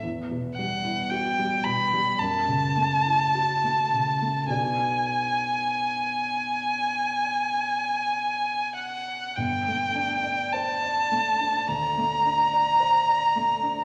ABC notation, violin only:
X:1
M:4/4
L:1/8
Q:1/4=52
K:Bm
V:1 name="Violin"
z f g b a4 | ^g6- g f | [K:Gm] g2 a2 b4 |]